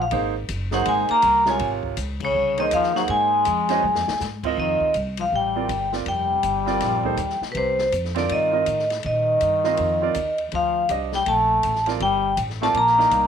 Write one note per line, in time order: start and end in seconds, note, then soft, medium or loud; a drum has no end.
0.00 0.10 A#1 medium
0.00 0.07 F5 medium
0.11 0.48 G#1 medium
0.11 0.32 A#3 medium
0.11 0.33 D#4 medium
0.11 0.33 G#4 medium
0.11 0.33 C5 medium
0.11 ride medium
0.49 0.85 F#1 medium
0.49 hi-hat pedal medium
0.49 ride medium
0.71 0.84 F#3 medium
0.71 1.20 A#3 medium
0.71 1.20 D#4 medium
0.71 1.21 G#4 medium
0.71 1.21 C5 medium
0.71 0.86 F#5 medium
0.71 snare medium
0.85 1.08 G#1 medium
0.85 1.07 G#3 medium
0.85 ride medium
0.89 1.09 G#5 medium
1.09 1.44 A#3 medium
1.09 1.45 A#5 loud
1.09 muted upright bass stroke soft
1.09 ride soft
1.22 1.59 C2 medium
1.22 hi-hat pedal medium
1.22 ride medium
1.45 1.94 C3 medium
1.45 1.60 G#3 medium
1.45 1.95 F4 medium
1.45 1.95 A#4 medium
1.45 1.95 C#5 medium
1.45 snare medium
1.50 1.61 G#5 medium
1.59 1.96 G#1 medium
1.59 ride medium
1.83 kick soft
1.97 2.33 C#2 medium
1.97 hi-hat pedal soft
1.97 ride medium
2.20 2.56 C#3 medium
2.20 kick medium
2.20 crash medium
2.25 2.57 C#5 medium
2.35 2.71 C2 medium
2.58 2.65 D#3 medium
2.58 2.93 A#3 medium
2.58 2.93 D#4 medium
2.58 2.93 G#4 medium
2.58 2.94 C5 medium
2.58 2.66 D#5 medium
2.58 ride soft
2.71 3.08 D#2 medium
2.71 2.94 F3 medium
2.71 2.94 F5 medium
2.71 hi-hat pedal medium
2.71 ride medium
2.83 snare soft
2.95 3.02 F#3 medium
2.95 3.43 A#3 medium
2.95 3.43 D#4 medium
2.95 3.44 G#4 medium
2.95 3.44 C5 medium
2.95 3.02 F#5 medium
2.95 snare soft
3.08 3.45 G#2 medium
3.08 4.17 G#3 medium
3.08 4.17 G#5 medium
3.08 ride medium
3.45 3.82 F2 medium
3.45 hi-hat pedal medium
3.45 ride medium
3.69 3.82 C#4 medium
3.69 3.82 F#4 medium
3.69 3.82 C5 medium
3.69 3.83 D#5 medium
3.69 snare soft
3.69 ride soft
3.82 3.96 F#2 medium
3.82 high tom soft
3.95 4.08 F2 soft
3.95 snare medium
4.08 4.20 D#2 medium
4.08 snare medium
4.20 4.57 G#2 medium
4.20 snare medium
4.20 hi-hat pedal medium
4.43 4.92 C4 medium
4.43 4.93 F4 medium
4.43 4.93 A#4 medium
4.43 4.93 D#5 medium
4.43 kick medium
4.43 crash medium
4.57 4.79 F2 medium
4.57 4.93 D#3 medium
4.57 4.93 D#5 medium
4.80 muted upright bass stroke soft
4.80 kick soft
4.94 5.31 C2 medium
4.94 hi-hat pedal soft
4.94 ride medium
5.17 5.25 F3 medium
5.17 5.27 F5 medium
5.17 ride medium
5.32 5.68 A1 medium
5.32 5.89 G3 medium
5.32 5.91 G5 medium
5.56 5.68 C4 medium
5.56 5.68 F4 medium
5.56 5.68 A#4 medium
5.56 5.69 D5 medium
5.68 6.05 G1 medium
5.68 hi-hat pedal soft
5.68 ride medium
5.92 6.05 C4 medium
5.92 6.05 F4 soft
5.92 6.06 A#4 soft
5.92 6.06 D5 medium
5.92 snare medium
6.06 6.42 F1 medium
6.06 7.38 G3 medium
6.06 7.39 G5 medium
6.06 ride medium
6.43 6.80 G1 medium
6.43 hi-hat pedal medium
6.43 ride medium
6.66 7.02 C4 medium
6.66 7.02 F4 medium
6.66 7.02 A#4 medium
6.66 7.02 D5 medium
6.66 snare soft
6.80 7.16 A#1 medium
6.80 snare soft
6.80 ride medium
7.04 7.17 A#3 medium
7.04 7.17 D#4 medium
7.04 7.17 A4 medium
7.04 7.18 C5 medium
7.04 kick soft
7.17 7.39 D#2 medium
7.17 hi-hat pedal soft
7.17 ride medium
7.30 snare soft
7.41 muted upright bass stroke soft
7.41 snare soft
7.49 7.53 B2 soft
7.49 7.56 B4 medium
7.54 7.91 C2 medium
7.54 7.89 C3 medium
7.54 7.91 C5 medium
7.54 ride medium
7.79 snare soft
7.92 8.29 F2 medium
7.92 hi-hat pedal medium
7.92 ride medium
8.05 snare soft
8.15 8.28 D3 medium
8.15 8.50 C4 medium
8.15 8.51 F4 medium
8.15 8.51 A#4 medium
8.15 8.51 D5 medium
8.15 snare soft
8.15 ride soft
8.19 8.32 D5 medium
8.28 8.66 G2 medium
8.28 8.86 D#3 medium
8.28 8.88 D#5 medium
8.28 ride medium
8.52 8.65 C4 medium
8.52 8.65 F4 medium
8.52 8.65 A#4 medium
8.52 8.66 D#5 medium
8.66 9.03 A2 medium
8.66 hi-hat pedal medium
8.66 ride medium
8.79 snare soft
8.90 snare soft
8.90 ride soft
9.03 9.40 A#2 medium
9.03 10.35 D#3 medium
9.03 10.36 D#5 medium
9.03 ride medium
9.41 9.77 G2 medium
9.41 hi-hat pedal soft
9.41 ride medium
9.64 9.99 C4 medium
9.64 9.99 F4 medium
9.64 10.00 A#4 medium
9.64 10.00 D#5 medium
9.64 snare soft
9.77 10.15 F2 medium
9.77 ride medium
10.02 10.14 C4 medium
10.02 10.14 F4 medium
10.02 10.15 A#4 medium
10.02 10.15 D5 medium
10.14 10.52 D#2 medium
10.14 hi-hat pedal medium
10.14 ride medium
10.38 ride soft
10.52 10.89 D2 medium
10.52 10.87 F3 medium
10.52 10.89 F5 medium
10.52 ride medium
10.89 11.26 C2 medium
10.89 11.11 D4 medium
10.89 11.11 G4 medium
10.89 11.11 C5 soft
10.89 11.11 D#5 medium
10.89 hi-hat pedal medium
10.89 ride medium
11.12 11.25 G3 medium
11.12 11.28 G5 medium
11.12 snare soft
11.26 11.63 A#1 medium
11.26 11.83 A3 medium
11.26 11.84 A5 medium
11.26 ride medium
11.63 12.00 A1 medium
11.63 hi-hat pedal soft
11.63 ride medium
11.75 snare soft
11.86 11.99 C4 medium
11.86 12.00 F4 medium
11.86 12.00 A#4 medium
11.86 12.00 D5 medium
11.86 snare soft
11.86 ride soft
12.00 12.36 G1 medium
12.00 12.35 G3 medium
12.00 12.36 G5 medium
12.00 ride medium
12.37 12.73 A1 medium
12.37 hi-hat pedal medium
12.37 ride medium
12.50 snare soft
12.61 12.67 A3 medium
12.61 12.74 C4 medium
12.61 12.74 F4 medium
12.61 12.75 A#4 medium
12.61 12.75 D5 medium
12.61 12.69 A5 medium
12.61 snare soft
12.74 13.11 A#1 medium
12.74 13.27 A#3 medium
12.74 13.27 A#5 medium
12.74 ride medium
12.87 snare soft
12.98 13.27 D#4 medium
12.98 13.27 A#4 medium
12.98 13.27 D5 medium
12.98 13.27 F5 medium
12.98 snare soft
13.11 13.27 C2 medium
13.11 hi-hat pedal soft
13.11 ride medium